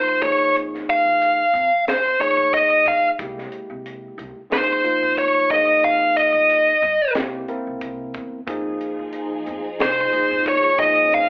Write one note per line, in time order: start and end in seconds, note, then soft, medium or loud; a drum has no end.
0.00 0.20 F3 medium
0.00 0.20 A#3 medium
0.00 0.20 D#4 medium
0.00 0.22 F4 medium
0.00 0.21 C5 medium
0.07 muted upright bass stroke soft
0.21 0.55 A#1 medium
0.21 1.42 F3 medium
0.21 1.42 A#3 medium
0.21 1.42 D#4 medium
0.21 1.43 G#4 medium
0.21 0.54 C#5 medium
0.21 kick loud
0.21 closed hi-hat medium
0.55 0.80 G#1 medium
0.55 closed hi-hat medium
0.74 snare soft
0.89 1.84 F5 medium
0.89 closed hi-hat medium
1.06 1.31 A#1 medium
1.22 closed hi-hat medium
1.54 1.67 F2 loud
1.54 closed hi-hat medium
1.87 2.12 G#1 medium
1.87 2.20 C5 medium
1.87 snare loud
1.87 closed hi-hat medium
2.19 3.10 F3 medium
2.19 3.10 A#3 medium
2.19 3.10 D#4 medium
2.19 3.11 G#4 medium
2.19 2.53 C#5 medium
2.19 closed hi-hat medium
2.38 2.63 A#1 medium
2.53 2.86 D#5 medium
2.53 kick medium
2.53 closed hi-hat medium
2.86 3.00 A#2 medium
2.86 3.07 F5 medium
2.86 kick medium
2.86 closed hi-hat medium
3.19 3.44 C2 medium
3.19 4.40 G#3 medium
3.19 4.40 A#3 medium
3.19 4.40 E4 medium
3.19 4.40 G4 medium
3.19 kick loud
3.19 closed hi-hat medium
3.38 snare soft
3.52 closed hi-hat medium
3.70 4.07 C3 medium
3.86 closed hi-hat medium
4.18 4.32 C2 loud
4.18 closed hi-hat medium
4.37 muted upright bass stroke soft
4.50 4.76 F2 medium
4.50 4.81 F3 medium
4.50 4.81 A#3 medium
4.50 4.81 D#4 medium
4.50 4.81 G#4 medium
4.50 5.14 C5 medium
4.50 snare loud
4.50 closed hi-hat medium
4.84 5.50 F3 medium
4.84 5.50 A#3 medium
4.84 5.51 D#4 medium
4.84 5.50 F4 medium
4.84 muted upright bass stroke soft
4.84 closed hi-hat soft
5.02 5.28 F2 medium
5.17 5.50 C#5 medium
5.17 kick medium
5.17 closed hi-hat medium
5.35 muted upright bass stroke soft
5.50 5.82 A#1 medium
5.50 6.72 F3 medium
5.50 6.72 A#3 medium
5.50 6.72 D#4 medium
5.50 6.72 G#4 medium
5.50 5.83 D#5 medium
5.50 kick medium
5.50 closed hi-hat medium
5.82 6.08 G#1 medium
5.82 6.16 F5 medium
5.82 closed hi-hat medium
6.17 7.12 D#5 medium
6.17 closed hi-hat medium
6.34 6.59 A#1 medium
6.50 closed hi-hat medium
6.82 6.96 G2 loud
6.82 closed hi-hat medium
7.15 7.41 C2 medium
7.15 7.46 A#3 medium
7.15 7.46 C4 medium
7.15 7.46 E4 medium
7.15 7.46 G4 medium
7.15 snare loud
7.15 closed hi-hat medium
7.48 8.39 A#3 medium
7.48 8.39 C4 medium
7.48 8.39 E4 medium
7.48 8.40 A#4 medium
7.48 closed hi-hat medium
7.67 7.78 C2 medium
7.81 8.11 C2 medium
7.81 kick medium
7.81 closed hi-hat medium
8.14 8.44 E2 medium
8.14 kick medium
8.14 closed hi-hat medium
8.47 8.73 F2 medium
8.47 10.76 F3 medium
8.47 9.68 F3 medium
8.47 9.68 A#3 medium
8.47 10.76 D#4 medium
8.47 9.68 D#4 medium
8.47 10.76 G#4 medium
8.47 9.69 G#4 medium
8.47 kick loud
8.47 closed hi-hat medium
8.81 closed hi-hat medium
8.99 9.36 F3 medium
9.13 closed hi-hat medium
9.46 9.61 F2 medium
9.46 closed hi-hat medium
9.65 muted upright bass stroke soft
9.79 10.05 C2 medium
9.79 10.43 C5 medium
9.79 snare loud
9.79 closed hi-hat medium
10.12 10.77 F3 medium
10.12 10.78 A#3 medium
10.12 10.78 D#4 medium
10.12 10.78 G#4 medium
10.12 muted upright bass stroke soft
10.12 closed hi-hat medium
10.31 10.56 F2 medium
10.46 10.79 C#5 medium
10.46 kick medium
10.46 closed hi-hat medium
10.64 muted upright bass stroke soft
10.79 11.11 A#1 medium
10.79 11.29 F3 medium
10.79 11.29 G#3 medium
10.79 11.29 A#3 medium
10.79 11.29 C#4 medium
10.79 11.29 D#4 medium
10.79 11.29 G#4 medium
10.79 11.11 D#5 medium
10.79 kick loud
10.79 closed hi-hat medium
11.11 11.29 G#1 medium
11.11 11.29 F5 medium
11.11 closed hi-hat medium